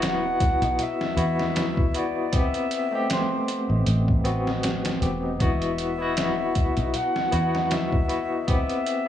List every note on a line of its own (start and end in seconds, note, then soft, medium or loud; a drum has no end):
0.00 0.58 E1 loud
0.00 1.16 B3 loud
0.00 1.17 E4 medium
0.00 1.18 F#4 loud
0.00 snare loud
0.00 closed hi-hat medium
0.00 tabla na medium
0.04 0.84 F#5 loud
0.24 tabla na soft
0.40 kick loud
0.40 closed hi-hat medium
0.61 0.77 B1 medium
0.61 closed hi-hat soft
0.61 tabla na medium
0.78 1.99 E5 loud
0.78 closed hi-hat medium
0.78 tabla na medium
1.00 snare medium
1.00 tabla na soft
1.16 2.29 E2 medium
1.16 1.90 B3 medium
1.16 1.90 E4 medium
1.16 1.91 F#4 medium
1.16 closed hi-hat medium
1.38 snare soft
1.38 tabla na medium
1.56 snare loud
1.56 closed hi-hat medium
1.56 tabla na medium
1.77 kick loud
1.77 tabla na soft
1.94 2.28 B3 medium
1.94 2.29 E4 medium
1.94 2.29 F#4 medium
1.94 2.37 D5 medium
1.94 closed hi-hat medium
2.15 tabla na medium
2.32 2.87 B3 medium
2.32 2.87 C4 medium
2.32 2.88 G4 loud
2.32 3.14 E5 loud
2.32 kick loud
2.32 closed hi-hat medium
2.32 tabla na medium
2.54 closed hi-hat soft
2.54 tabla na soft
2.71 closed hi-hat medium
2.91 4.21 A3 medium
2.91 4.22 C4 medium
2.91 tabla na medium
2.95 4.23 G4 loud
3.10 3.88 C5 medium
3.10 snare loud
3.10 closed hi-hat medium
3.10 tabla na medium
3.31 tabla na soft
3.48 closed hi-hat medium
3.69 3.84 A1 medium
3.69 tabla na medium
3.86 4.99 A1 medium
3.86 closed hi-hat medium
3.86 tabla na medium
4.08 kick medium
4.08 tabla na soft
4.24 4.97 B3 medium
4.24 4.98 C4 medium
4.24 4.98 F#4 medium
4.24 closed hi-hat medium
4.46 snare soft
4.46 tabla na medium
4.63 snare loud
4.63 closed hi-hat medium
4.63 tabla na medium
4.85 snare loud
4.85 closed hi-hat medium
4.85 tabla na soft
5.00 5.36 E1 medium
5.00 5.35 B3 medium
5.00 5.36 C4 medium
5.00 5.37 G4 medium
5.00 closed hi-hat medium
5.23 tabla na medium
5.39 6.73 E1 loud
5.39 5.95 B3 loud
5.39 5.95 E4 medium
5.39 5.95 F#4 loud
5.39 6.97 E5 loud
5.39 kick loud
5.39 closed hi-hat medium
5.39 tabla na medium
5.62 closed hi-hat soft
5.62 tabla na soft
5.78 closed hi-hat medium
5.98 7.28 B3 medium
5.98 7.29 E4 medium
5.98 7.30 F#4 loud
5.98 tabla na medium
6.17 snare loud
6.17 closed hi-hat medium
6.17 tabla na medium
6.39 tabla na soft
6.55 kick medium
6.55 closed hi-hat medium
6.77 6.92 B1 medium
6.77 closed hi-hat soft
6.77 tabla na medium
6.94 7.74 F#5 loud
6.94 closed hi-hat medium
6.94 tabla na medium
7.16 snare soft
7.16 tabla na soft
7.31 8.45 E2 medium
7.31 8.05 B3 loud
7.31 8.05 E4 medium
7.31 8.06 F#4 loud
7.31 closed hi-hat medium
7.54 snare soft
7.54 tabla na medium
7.70 8.49 E5 medium
7.70 snare loud
7.70 closed hi-hat medium
7.70 tabla na medium
7.92 kick medium
7.92 tabla na soft
8.08 8.43 B3 medium
8.08 8.44 E4 medium
8.08 8.44 F#4 medium
8.08 closed hi-hat medium
8.31 tabla na medium
8.47 9.02 B3 medium
8.47 9.03 C4 medium
8.47 9.03 G4 loud
8.47 9.08 E5 loud
8.47 kick loud
8.47 closed hi-hat medium
8.47 tabla na medium
8.69 closed hi-hat soft
8.69 tabla na soft
8.86 closed hi-hat medium